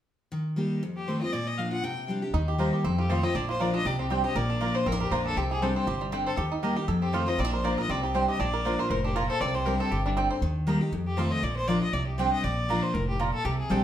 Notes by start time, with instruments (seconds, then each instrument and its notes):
0.32 steel-string acoustic guitar D#3
0.56 steel-string acoustic guitar G3 A#3 D#4 G4
0.83 steel-string acoustic guitar F2
0.97 fiddle G4
1.08 steel-string acoustic guitar D#3 A3 C4 F4, fiddle C5
1.21 steel-string acoustic guitar C4 F4, fiddle D#5
1.33 steel-string acoustic guitar A#2, fiddle D5
1.47 fiddle D#5
1.58 steel-string acoustic guitar F3 A#3 D4 F4, fiddle F5
1.71 steel-string acoustic guitar D4 F4, fiddle F#5
1.84 steel-string acoustic guitar C3, fiddle G5
2.08 steel-string acoustic guitar G3 C4 D4 G4
2.22 steel-string acoustic guitar D4 G4
2.33 upright bass D#2, steel-string acoustic guitar D#3, five-string banjo D#4
2.48 five-string banjo G4
2.58 steel-string acoustic guitar G3 A#3 D#4 G4, mandolin A#3 G4 D#5 A#5, five-string banjo C5
2.73 five-string banjo G4
2.84 upright bass F2, steel-string acoustic guitar F2, five-string banjo C4
2.98 five-string banjo F4, fiddle G4
3.09 steel-string acoustic guitar D#3 A3 C4 F4, mandolin D#4 A4 F5 C6, fiddle C5, five-string banjo C5
3.23 five-string banjo C4, steel-string acoustic guitar C4 F4, fiddle D#5
3.35 upright bass A#1, steel-string acoustic guitar A#2, five-string banjo D4, fiddle D5
3.49 five-string banjo F4, fiddle C5
3.60 steel-string acoustic guitar F3 A#3 D4 F4, mandolin A#3 F4 D5 A#5, five-string banjo C5, fiddle D5
3.74 five-string banjo D4, steel-string acoustic guitar D4 F4, fiddle D#5
3.85 upright bass C2, steel-string acoustic guitar C3, five-string banjo G4, fiddle D5
3.99 five-string banjo C4, fiddle G4
4.10 steel-string acoustic guitar G3 C4 D4 G4, mandolin C4 G4 D5 G5, five-string banjo G4, fiddle C5
4.24 steel-string acoustic guitar D4 G4, five-string banjo C5, fiddle D#5
4.35 upright bass A#1, steel-string acoustic guitar A#2, five-string banjo A#4, fiddle D5
4.50 five-string banjo D4
4.61 steel-string acoustic guitar F3 A#3 D4 F4, mandolin A#3 F4 D5 A#5, five-string banjo F4
4.75 five-string banjo C5, fiddle C5
4.86 upright bass A1, steel-string acoustic guitar F2, five-string banjo C4, fiddle A#4
4.92 five-string banjo D4
5.00 fiddle G4, five-string banjo A#4
5.11 upright bass A#1, steel-string acoustic guitar F3 A#3 D4 F4, mandolin A#3 F4 D5 A#5, fiddle F4, five-string banjo C5
5.26 five-string banjo D4, fiddle A4
5.37 upright bass C2, steel-string acoustic guitar C3, five-string banjo C4, fiddle G4
5.51 five-string banjo G4, fiddle G#4
5.62 steel-string acoustic guitar G3 C4 D4 G4, mandolin C4 G4 D5 G5, fiddle A4, five-string banjo C5
5.76 five-string banjo C4, fiddle C5
5.87 upright bass G1, steel-string acoustic guitar C3, five-string banjo G4
6.01 five-string banjo G3
6.12 steel-string acoustic guitar D3, mandolin C4 G4 D5 G5, five-string banjo C4
6.26 fiddle A4, five-string banjo C5
6.37 upright bass D#2, steel-string acoustic guitar D#3, five-string banjo G4
6.52 five-string banjo D#4
6.63 steel-string acoustic guitar G3 A#3 D#4 G4, mandolin A#3 G4 D#5 A#5, five-string banjo G4
6.76 steel-string acoustic guitar D#4 G4, five-string banjo G4
6.88 upright bass F2, steel-string acoustic guitar F2, five-string banjo A4
7.02 five-string banjo C4, fiddle G4
7.13 steel-string acoustic guitar D#3 A3 C4 F4, mandolin D#4 A4 F5 C6, five-string banjo F4, fiddle C5
7.26 steel-string acoustic guitar C4 F4, five-string banjo C5, fiddle D#5
7.38 upright bass A#1, steel-string acoustic guitar A#2, five-string banjo C4, fiddle D5
7.45 five-string banjo D4
7.53 five-string banjo A#4, fiddle C5
7.63 steel-string acoustic guitar F3 A#3 D4 F4, mandolin A#3 F4 D5 A#5, five-string banjo C5, fiddle D5
7.77 steel-string acoustic guitar D4 F4, five-string banjo A#4, fiddle D#5
7.89 upright bass C2, steel-string acoustic guitar C3, five-string banjo C4, fiddle D5
8.03 five-string banjo G4, fiddle G4
8.14 steel-string acoustic guitar G3 C4 D4 G4, mandolin C4 G4 D5 G5, five-string banjo C5, fiddle C5
8.28 five-string banjo G4, fiddle D#5
8.39 upright bass A#1, steel-string acoustic guitar A#2, five-string banjo D4, fiddle D5
8.54 five-string banjo A#4
8.65 steel-string acoustic guitar F3 A#3 D4 F4, mandolin A#3 F4 D5 A#5, five-string banjo C5
8.79 steel-string acoustic guitar D4 F4, five-string banjo A#4, fiddle C5
8.90 upright bass F1, steel-string acoustic guitar A2, fiddle A#4, five-string banjo C5
9.04 five-string banjo D4, fiddle G4
9.15 steel-string acoustic guitar A#2, mandolin A#3 F4 D5 A#5, fiddle F4, five-string banjo A#4
9.29 fiddle A4, five-string banjo C5
9.41 upright bass C2, steel-string acoustic guitar C3, five-string banjo C4, fiddle D5
9.54 five-string banjo G4, fiddle C5
9.66 steel-string acoustic guitar G3 C4 D4 G4, mandolin C4 G4 D5 G5, fiddle A#4, five-string banjo C5
9.79 five-string banjo C4, fiddle A4
9.91 upright bass G1, steel-string acoustic guitar C3, fiddle G4, five-string banjo G4
10.05 five-string banjo G3, fiddle D4
10.17 steel-string acoustic guitar D3, mandolin C4 G4 D5 G5, five-string banjo C4
10.30 five-string banjo C5
10.42 upright bass D#2, steel-string acoustic guitar D#3
10.67 steel-string acoustic guitar G3 A#3 D#4 G4, mandolin A#3 G4 D#5 A#5
10.81 steel-string acoustic guitar D#4 G4
10.92 upright bass F2, steel-string acoustic guitar F2
11.07 fiddle G4
11.17 steel-string acoustic guitar D#3 A3 C4 F4, mandolin D#4 A4 F5 C6, fiddle C5
11.31 fiddle D#5
11.43 upright bass A#1, steel-string acoustic guitar A#2, fiddle D5
11.56 fiddle C5
11.68 steel-string acoustic guitar F3 A#3 D4 F4, mandolin A#3 F4 D5 A#5, fiddle D5
11.81 steel-string acoustic guitar D4 F4, fiddle D#5
11.93 upright bass C2, steel-string acoustic guitar C3, fiddle D5
12.07 fiddle G4
12.18 steel-string acoustic guitar G3 C4 D4 G4, mandolin C4 G4 D5 G5, fiddle C5
12.32 fiddle D#5
12.43 upright bass A#1, steel-string acoustic guitar A#2, fiddle D5
12.69 steel-string acoustic guitar F3 A#3 D4 F4, mandolin A#3 F4 D5 A#5
12.82 fiddle C5
12.93 upright bass F1, steel-string acoustic guitar A2, fiddle A#4
13.08 fiddle G4
13.20 steel-string acoustic guitar A#2, mandolin A#3 F4 D5 A#5, fiddle F4
13.34 fiddle A4
13.45 upright bass C2, steel-string acoustic guitar C3, fiddle G4
13.59 fiddle G#4
13.70 upright bass A#1, steel-string acoustic guitar G3 C4 D4 G4, mandolin C4 G4 D5 G5, fiddle A4